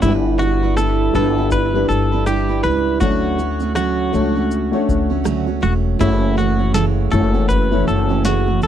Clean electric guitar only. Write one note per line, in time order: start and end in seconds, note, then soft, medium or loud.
0.02 0.12 E4 loud
0.39 0.74 F#4 medium
0.77 1.14 A4 loud
1.15 1.50 A4 medium
1.52 1.88 B4 loud
1.89 2.26 A4 loud
2.27 2.63 G4 medium
2.64 3.00 B4 loud
3.00 3.72 F#4 medium
3.76 5.62 F#4 medium
5.63 5.73 F#4 medium
6.01 6.37 E4 medium
6.38 6.74 F#4 medium
6.74 6.85 A4 medium
7.12 7.48 A4 medium
7.49 7.87 B4 loud
7.88 8.22 A4 medium
8.25 8.60 F#4 medium
8.63 8.67 A4 medium